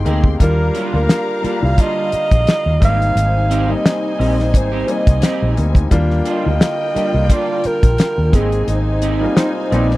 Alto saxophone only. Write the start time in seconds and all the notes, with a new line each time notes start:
0.43 A#4
0.96 A#4
1.65 F5
1.81 D#5
2.85 F5
3.72 D#5
4.57 C5
4.92 D#5
6.30 D#5
7.33 D5
7.67 A#4
8.36 G#4
8.70 D#4